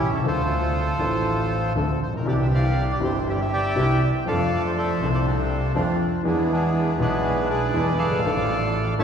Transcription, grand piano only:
0.06 B1
0.12 C2
0.19 C#2 F3
0.24 D2 D3 C4 D4 A4
0.97 A1 A2 F3 C4 D4 A4
1.75 D2 D3 F3 C4 D4 A4
2.06 A1
2.13 A#1
2.19 B1
2.23 C2 C3 E3 C4 D4
2.27 G4
2.99 G1 G2 E3 C4 D4
3.03 G4
3.76 C2 C3 E3 C4 D4 G4
4.25 F2 F3 C4 D4
4.29 A4
5.00 C2 C3 F3 C4 D4
5.04 A4
5.75 F2 F3 C4 D4 A4
6.23 E2 E3 B3 D4 G#4
6.97 B1 B2 E3 B3 D4
7.02 G#4
7.74 E2 E3 B3 D4 G#4
8.05 F#1
8.12 G1
8.19 G#1
8.23 A1 A2 F3 A3 D4
8.27 A4
8.99 A1 A2 F3 A3 D4 A4

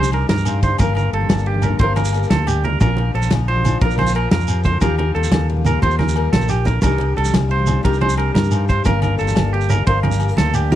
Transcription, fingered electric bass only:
Already playing: C2
0.30 G2
0.80 G1
1.13 G1
1.30 G1
1.80 G1
2.31 D2
2.81 A#1
3.14 A#1
3.32 A#1
3.82 A#1
4.32 F2
4.82 D#2
5.15 D#2
5.32 D#2
5.83 D#2
6.33 A#1
6.84 C2
7.18 C2
7.34 C2
7.86 C2
8.36 G2
8.87 G1
9.21 G1
9.38 G1
9.87 G1
10.39 D2

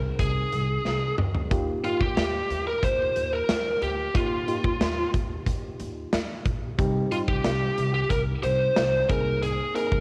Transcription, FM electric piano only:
Already playing: C4 D#4 G#4 A#4
1.50 A#3 D#4 F4 G4
1.83 A#3 D#4 F4 G4
4.14 A#3 D#4 F4 G4
4.47 A#3 D#4 F4 G4
6.78 G3 C4 D#4 G4
7.11 G3 C4 D#4 G4
9.09 A#3 C4 D#4 G#4
9.74 A#3 C4 D#4 G#4

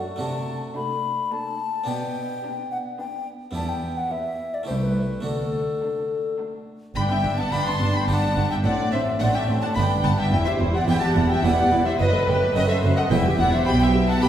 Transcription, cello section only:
0.20 C3
1.88 B2
3.56 E2
4.68 C2
5.25 D2
6.96 G2
7.24 G2
7.52 G2
7.79 G2
8.07 G2
8.36 G2
8.64 A2
8.92 A2
9.20 A2
9.48 A2
9.76 G2
10.04 G2
10.32 E2
10.60 E2
10.88 E2
11.16 E2
11.44 E2
11.72 E2
12.00 F#2
12.28 F#2
12.55 F#2
12.83 F#2
13.11 E2
13.39 E2
13.67 B2
14.23 B2

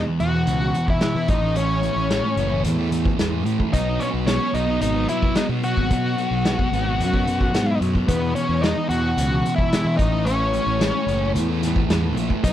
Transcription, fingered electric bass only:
0.20 E2
0.47 C#2
1.15 E3
1.29 A1
1.96 A1
2.37 F#1
2.63 E2
3.18 E2
3.45 A2
3.73 B1
4.14 B1
4.54 B1
4.81 G#1
5.49 B2
5.77 G#1
5.91 B2
6.31 B1
6.72 G#1
6.99 F#2
7.53 G#2
7.81 F#2
8.08 E2
8.49 E2
8.90 E2
9.17 C#2
9.85 E3
9.99 A1
10.66 A1
11.06 F#1
11.34 E2
11.89 E2
12.16 A#1
12.44 B1

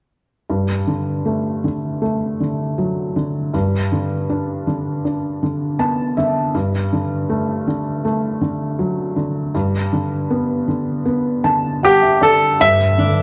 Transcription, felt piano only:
0.50 G2
0.87 D3
1.25 A3
1.64 D3
2.02 A3
2.40 D3
2.78 F#3
3.16 D3
3.54 G2
3.92 D3
4.30 D4
4.67 D3
5.05 D4
5.43 D3
5.79 B3 A5
6.17 D3 E5
6.55 G2
6.93 D3
7.29 A3
7.67 D3
8.05 A3
8.41 D3
8.79 F#3
9.16 D3
9.55 G2
9.93 D3
10.30 B3
10.68 D3
11.06 B3
11.44 D3 A5
11.83 G3 F#5
12.02 E5
12.21 D3 D5
12.60 G2
12.98 D3

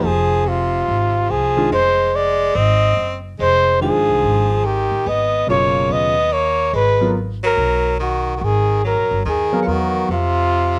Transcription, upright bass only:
0.04 F1
0.88 G#1
1.30 C2
1.72 F1
2.55 G#1
2.97 F#1
3.39 F1
3.95 G#1
4.09 C2
4.23 G#1
4.91 A1
5.06 G#1
5.48 F#1
5.89 D#2
6.73 G#1
7.57 B1
8.41 G#1
8.98 A#1
9.11 G1
9.25 D#2
9.67 E2
10.09 F2

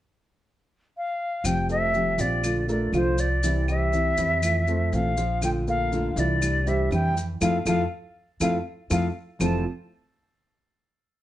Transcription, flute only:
0.97 F5
1.46 G5
1.71 E5
2.20 D5
2.70 D5
2.95 C5
3.20 D5
3.69 E5
4.95 F5
5.44 G5
5.69 F5
6.19 D5
6.68 E5
6.93 G5
7.42 F5
7.68 F5
8.42 F5
8.92 F5
9.42 A5

